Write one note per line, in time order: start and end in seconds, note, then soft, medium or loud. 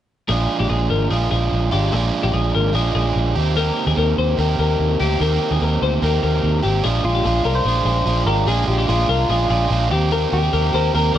0.28 0.46 A#1 medium
0.28 1.11 A#2 medium
0.28 1.09 F3 medium
0.28 1.10 G#3 medium
0.28 1.11 D4 medium
0.28 0.58 G#4 medium
0.33 1.12 F4 medium
0.59 0.69 A#1 medium
0.59 0.69 G4 medium
0.70 0.87 A#1 medium
0.70 0.90 G#4 medium
0.90 1.07 G#1 medium
0.90 1.10 A#4 medium
1.10 1.28 A#1 medium
1.10 1.72 F3 medium
1.10 1.73 G#3 soft
1.10 1.72 D4 medium
1.10 1.70 F4 medium
1.10 1.30 G#4 medium
1.31 1.49 A#1 medium
1.31 1.70 G#4 medium
1.52 1.69 A#1 medium
1.71 1.89 G#1 medium
1.71 1.93 G#3 soft
1.71 1.93 D4 medium
1.71 1.92 F4 medium
1.71 1.93 G4 medium
1.92 2.10 A#1 medium
1.92 2.74 A#2 medium
1.92 2.72 F3 medium
1.92 2.73 G#3 medium
1.92 2.74 D4 medium
1.92 2.22 G#4 medium
1.96 2.75 F4 medium
2.23 2.32 A#1 medium
2.23 2.33 G4 medium
2.34 2.51 A#1 medium
2.34 2.54 G#4 medium
2.55 2.71 G#1 medium
2.55 2.75 A#4 medium
2.73 2.91 A#1 medium
2.73 3.35 F3 medium
2.73 3.36 G#3 medium
2.73 3.36 D4 medium
2.73 3.35 F4 medium
2.73 2.94 G#4 medium
2.95 3.12 A#1 medium
2.95 3.36 G#4 medium
3.16 3.33 A#1 medium
3.35 3.70 D#2 medium
3.35 3.56 A#3 soft
3.35 3.57 C4 soft
3.35 3.56 G4 soft
3.35 3.56 G4 medium
3.55 4.36 D#3 medium
3.55 4.38 A#3 medium
3.55 4.38 C4 medium
3.55 3.86 A#4 medium
3.60 4.39 G4 medium
3.87 3.96 D#2 medium
3.87 3.97 G#4 medium
3.97 4.14 D#2 medium
3.97 4.18 A#4 medium
4.18 4.35 D#2 medium
4.18 4.38 C5 medium
4.37 4.55 D#2 medium
4.37 4.99 D#3 medium
4.37 5.02 A#3 medium
4.37 5.00 C4 medium
4.37 4.98 G4 medium
4.37 4.58 A#4 medium
4.59 4.76 D#2 medium
4.59 4.98 A#4 medium
4.79 4.96 D#2 medium
4.99 5.17 D2 medium
4.99 5.20 A#3 soft
4.99 5.21 C4 soft
4.99 5.20 G4 medium
4.99 5.21 G4 medium
5.19 5.37 D#2 medium
5.19 6.01 D#3 medium
5.19 6.02 A#3 medium
5.19 6.03 C4 medium
5.19 5.50 A#4 medium
5.24 6.03 G4 medium
5.51 5.59 D#2 medium
5.51 5.62 G#4 medium
5.62 5.78 D#2 medium
5.62 5.82 A#4 medium
5.82 5.99 D2 medium
5.82 6.03 C5 medium
6.02 6.19 D#2 medium
6.02 6.64 D#3 soft
6.02 6.65 A#3 medium
6.02 6.63 C4 medium
6.02 6.61 G4 medium
6.02 6.22 A#4 medium
6.23 6.40 D#2 medium
6.23 6.62 A#4 medium
6.44 6.60 D#2 medium
6.63 6.81 G#1 medium
6.63 6.84 A#3 soft
6.63 6.84 C4 soft
6.63 6.84 G4 soft
6.63 6.84 G4 medium
6.83 7.01 A#1 medium
6.83 7.04 A#2 medium
6.83 7.04 F3 medium
6.83 7.05 G#3 medium
6.83 7.04 D4 medium
6.83 7.02 F4 medium
6.83 7.13 G#4 medium
7.04 7.21 A#1 medium
7.04 7.25 G#3 soft
7.04 7.25 D4 soft
7.04 7.25 F4 soft
7.04 7.52 F4 medium
7.15 7.24 G4 medium
7.24 7.42 A#1 loud
7.24 7.45 A#2 medium
7.24 7.46 F3 medium
7.24 7.46 G#3 medium
7.24 7.45 D4 medium
7.24 7.43 F4 medium
7.24 7.45 G#4 medium
7.44 7.62 C2 medium
7.44 7.66 G#3 soft
7.44 7.66 D4 soft
7.44 7.66 F4 medium
7.44 7.65 A#4 medium
7.55 8.23 C5 medium
7.65 7.82 A#1 medium
7.65 7.86 F3 soft
7.65 7.87 G#3 medium
7.65 7.86 D4 medium
7.65 7.84 F4 medium
7.65 7.85 G#4 medium
7.85 8.03 A#1 medium
7.85 8.05 G#3 soft
7.85 8.06 D4 soft
7.85 8.06 F4 soft
7.85 8.25 G#4 medium
8.06 8.23 A#1 medium
8.06 8.27 A#2 medium
8.06 8.27 F3 medium
8.06 8.27 G#3 medium
8.06 8.27 D4 medium
8.06 8.25 F4 medium
8.26 8.43 G#1 medium
8.26 8.47 G#3 soft
8.26 8.47 D4 soft
8.26 8.48 F4 soft
8.26 8.47 G4 medium
8.26 8.46 A#4 medium
8.47 8.64 A#1 medium
8.47 8.68 A#2 medium
8.47 8.68 F3 medium
8.47 8.69 G#3 medium
8.47 8.68 D4 medium
8.47 8.66 F4 medium
8.47 8.77 G#4 medium
8.47 8.68 G#4 medium
8.67 8.85 A#1 medium
8.67 8.88 G#3 soft
8.67 8.88 D4 soft
8.67 8.88 F4 soft
8.67 8.87 G4 medium
8.78 8.88 G4 medium
8.88 9.06 A#1 medium
8.88 9.09 A#2 medium
8.88 9.09 F3 medium
8.88 9.10 G#3 medium
8.88 9.10 D4 medium
8.88 9.87 F4 medium
8.88 9.08 F4 medium
8.88 9.09 G#4 medium
9.09 9.26 C2 medium
9.09 9.29 G#3 soft
9.09 9.30 D4 soft
9.09 9.30 F4 medium
9.09 9.29 A#4 medium
9.29 9.46 A#1 medium
9.29 9.50 F3 medium
9.29 9.51 G#3 medium
9.29 9.50 D4 medium
9.29 9.48 F4 medium
9.29 9.49 G#4 medium
9.50 9.67 A#1 medium
9.50 9.70 G#3 soft
9.50 9.71 D4 medium
9.50 9.71 F4 soft
9.50 9.89 G#4 medium
9.70 9.87 A#1 medium
9.70 9.91 A#2 medium
9.70 9.91 F3 medium
9.70 9.92 G#3 medium
9.70 9.92 D4 medium
9.70 9.91 F4 medium
9.91 10.25 D#2 medium
9.91 10.11 A#3 soft
9.91 10.11 C4 soft
9.91 10.12 G4 medium
10.11 10.32 D#3 medium
10.11 10.32 A#3 medium
10.11 10.33 C4 medium
10.11 10.31 G4 medium
10.11 10.41 A#4 medium
10.32 10.49 D#2 medium
10.32 10.52 A#3 soft
10.32 10.54 C4 soft
10.32 10.53 G4 soft
10.32 10.75 G4 medium
10.43 10.53 G#4 medium
10.53 10.70 D#2 medium
10.53 10.73 D#3 medium
10.53 10.74 A#3 medium
10.53 10.74 C4 medium
10.53 10.72 G4 medium
10.53 10.73 A#4 medium
10.73 10.90 D#2 medium
10.73 10.93 A#3 soft
10.73 10.94 C4 soft
10.73 10.94 G4 medium
10.73 10.93 A#4 medium
10.73 10.94 C5 medium
10.93 11.11 D#2 medium
10.93 11.14 D#3 soft
10.93 11.15 A#3 medium
10.93 11.14 C4 medium
10.93 11.13 G4 medium
10.93 11.14 A#4 medium
10.93 11.15 A#4 medium
11.14 11.18 D#2 medium
11.14 11.18 G4 soft
11.14 11.18 A#4 medium